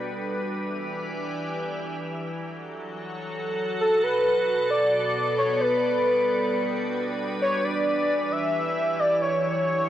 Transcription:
0, 0, Header, 1, 3, 480
1, 0, Start_track
1, 0, Key_signature, 2, "minor"
1, 0, Tempo, 500000
1, 9495, End_track
2, 0, Start_track
2, 0, Title_t, "Soft synth lead"
2, 0, Program_c, 0, 80
2, 3653, Note_on_c, 0, 69, 100
2, 3869, Note_on_c, 0, 71, 104
2, 3883, Note_off_c, 0, 69, 0
2, 4512, Note_off_c, 0, 71, 0
2, 4518, Note_on_c, 0, 74, 122
2, 5130, Note_off_c, 0, 74, 0
2, 5167, Note_on_c, 0, 73, 100
2, 5383, Note_on_c, 0, 71, 100
2, 5398, Note_off_c, 0, 73, 0
2, 6900, Note_off_c, 0, 71, 0
2, 7118, Note_on_c, 0, 73, 103
2, 7334, Note_on_c, 0, 74, 111
2, 7348, Note_off_c, 0, 73, 0
2, 7983, Note_on_c, 0, 76, 118
2, 7997, Note_off_c, 0, 74, 0
2, 8633, Note_on_c, 0, 74, 103
2, 8647, Note_off_c, 0, 76, 0
2, 8843, Note_off_c, 0, 74, 0
2, 8849, Note_on_c, 0, 73, 101
2, 9495, Note_off_c, 0, 73, 0
2, 9495, End_track
3, 0, Start_track
3, 0, Title_t, "Ambient pad"
3, 0, Program_c, 1, 92
3, 0, Note_on_c, 1, 55, 72
3, 0, Note_on_c, 1, 62, 67
3, 0, Note_on_c, 1, 71, 80
3, 188, Note_on_c, 1, 52, 78
3, 189, Note_off_c, 1, 55, 0
3, 573, Note_on_c, 1, 74, 79
3, 745, Note_on_c, 1, 64, 76
3, 882, Note_off_c, 1, 71, 0
3, 883, Note_off_c, 1, 62, 0
3, 1921, Note_off_c, 1, 52, 0
3, 1921, Note_off_c, 1, 74, 0
3, 1921, Note_on_c, 1, 54, 88
3, 2223, Note_on_c, 1, 69, 95
3, 2270, Note_on_c, 1, 66, 80
3, 2574, Note_off_c, 1, 64, 0
3, 3653, Note_off_c, 1, 54, 0
3, 3654, Note_on_c, 1, 47, 82
3, 4088, Note_on_c, 1, 59, 87
3, 4346, Note_off_c, 1, 66, 0
3, 4435, Note_on_c, 1, 74, 97
3, 5386, Note_off_c, 1, 47, 0
3, 5386, Note_on_c, 1, 55, 78
3, 5915, Note_on_c, 1, 62, 77
3, 6078, Note_off_c, 1, 69, 0
3, 6080, Note_off_c, 1, 59, 0
3, 6080, Note_off_c, 1, 74, 0
3, 6165, Note_on_c, 1, 71, 86
3, 7117, Note_on_c, 1, 52, 86
3, 7118, Note_off_c, 1, 55, 0
3, 7510, Note_on_c, 1, 64, 91
3, 7811, Note_off_c, 1, 62, 0
3, 7811, Note_off_c, 1, 71, 0
3, 8850, Note_off_c, 1, 52, 0
3, 8850, Note_on_c, 1, 54, 98
3, 9495, Note_off_c, 1, 54, 0
3, 9495, Note_off_c, 1, 64, 0
3, 9495, End_track
0, 0, End_of_file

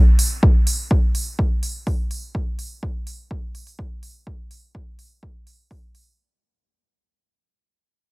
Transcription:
0, 0, Header, 1, 2, 480
1, 0, Start_track
1, 0, Tempo, 480000
1, 428, Time_signature, 4, 2, 24, 8
1, 8111, End_track
2, 0, Start_track
2, 0, Title_t, "Drums"
2, 188, Note_on_c, 9, 46, 107
2, 288, Note_off_c, 9, 46, 0
2, 428, Note_on_c, 9, 36, 106
2, 528, Note_off_c, 9, 36, 0
2, 668, Note_on_c, 9, 46, 98
2, 768, Note_off_c, 9, 46, 0
2, 908, Note_on_c, 9, 36, 110
2, 1008, Note_off_c, 9, 36, 0
2, 1148, Note_on_c, 9, 46, 96
2, 1248, Note_off_c, 9, 46, 0
2, 1388, Note_on_c, 9, 36, 111
2, 1488, Note_off_c, 9, 36, 0
2, 1628, Note_on_c, 9, 46, 96
2, 1728, Note_off_c, 9, 46, 0
2, 1868, Note_on_c, 9, 36, 111
2, 1868, Note_on_c, 9, 46, 57
2, 1968, Note_off_c, 9, 36, 0
2, 1968, Note_off_c, 9, 46, 0
2, 2108, Note_on_c, 9, 46, 98
2, 2208, Note_off_c, 9, 46, 0
2, 2348, Note_on_c, 9, 36, 106
2, 2448, Note_off_c, 9, 36, 0
2, 2587, Note_on_c, 9, 46, 94
2, 2687, Note_off_c, 9, 46, 0
2, 2828, Note_on_c, 9, 36, 110
2, 2928, Note_off_c, 9, 36, 0
2, 3068, Note_on_c, 9, 46, 97
2, 3168, Note_off_c, 9, 46, 0
2, 3308, Note_on_c, 9, 36, 108
2, 3408, Note_off_c, 9, 36, 0
2, 3548, Note_on_c, 9, 46, 93
2, 3648, Note_off_c, 9, 46, 0
2, 3668, Note_on_c, 9, 46, 55
2, 3768, Note_off_c, 9, 46, 0
2, 3788, Note_on_c, 9, 36, 112
2, 3888, Note_off_c, 9, 36, 0
2, 4028, Note_on_c, 9, 46, 98
2, 4128, Note_off_c, 9, 46, 0
2, 4268, Note_on_c, 9, 36, 110
2, 4368, Note_off_c, 9, 36, 0
2, 4508, Note_on_c, 9, 46, 96
2, 4608, Note_off_c, 9, 46, 0
2, 4748, Note_on_c, 9, 36, 109
2, 4848, Note_off_c, 9, 36, 0
2, 4988, Note_on_c, 9, 46, 97
2, 5088, Note_off_c, 9, 46, 0
2, 5228, Note_on_c, 9, 36, 105
2, 5328, Note_off_c, 9, 36, 0
2, 5468, Note_on_c, 9, 46, 94
2, 5568, Note_off_c, 9, 46, 0
2, 5708, Note_on_c, 9, 36, 113
2, 5708, Note_on_c, 9, 46, 58
2, 5808, Note_off_c, 9, 36, 0
2, 5808, Note_off_c, 9, 46, 0
2, 5948, Note_on_c, 9, 46, 102
2, 6047, Note_off_c, 9, 46, 0
2, 8111, End_track
0, 0, End_of_file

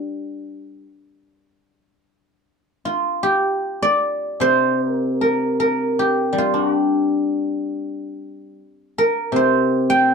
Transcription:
0, 0, Header, 1, 2, 480
1, 0, Start_track
1, 0, Tempo, 828729
1, 959, Time_signature, 4, 2, 24, 8
1, 960, Tempo, 785340
1, 3360, Tempo, 760456
1, 4800, Tempo, 739827
1, 6278, End_track
2, 0, Start_track
2, 0, Title_t, "Guzheng"
2, 0, Program_c, 0, 107
2, 0, Note_on_c, 0, 55, 59
2, 0, Note_on_c, 0, 62, 49
2, 0, Note_on_c, 0, 67, 102
2, 0, Note_on_c, 0, 70, 74
2, 242, Note_off_c, 0, 62, 0
2, 257, Note_off_c, 0, 70, 0
2, 458, Note_off_c, 0, 67, 0
2, 481, Note_off_c, 0, 55, 0
2, 1690, Note_on_c, 0, 65, 74
2, 1921, Note_on_c, 0, 67, 82
2, 2285, Note_on_c, 0, 74, 95
2, 2636, Note_on_c, 0, 48, 57
2, 2644, Note_on_c, 0, 72, 97
2, 2937, Note_off_c, 0, 72, 0
2, 2937, Note_on_c, 0, 70, 97
2, 3133, Note_off_c, 0, 70, 0
2, 3133, Note_on_c, 0, 70, 85
2, 3234, Note_off_c, 0, 65, 0
2, 3360, Note_off_c, 0, 67, 0
2, 3366, Note_off_c, 0, 70, 0
2, 3369, Note_on_c, 0, 70, 87
2, 3414, Note_off_c, 0, 74, 0
2, 3617, Note_on_c, 0, 67, 86
2, 3828, Note_on_c, 0, 55, 64
2, 3862, Note_off_c, 0, 67, 0
2, 3864, Note_on_c, 0, 65, 75
2, 3961, Note_on_c, 0, 62, 47
2, 3991, Note_off_c, 0, 65, 0
2, 3991, Note_on_c, 0, 66, 75
2, 4066, Note_off_c, 0, 66, 0
2, 4066, Note_on_c, 0, 67, 75
2, 4078, Note_off_c, 0, 48, 0
2, 4711, Note_off_c, 0, 70, 0
2, 4922, Note_off_c, 0, 62, 0
2, 5274, Note_off_c, 0, 55, 0
2, 5365, Note_off_c, 0, 67, 0
2, 5525, Note_on_c, 0, 70, 92
2, 5744, Note_on_c, 0, 48, 62
2, 5770, Note_on_c, 0, 72, 82
2, 6118, Note_on_c, 0, 79, 104
2, 6278, Note_off_c, 0, 48, 0
2, 6278, Note_off_c, 0, 70, 0
2, 6278, Note_off_c, 0, 72, 0
2, 6278, Note_off_c, 0, 79, 0
2, 6278, End_track
0, 0, End_of_file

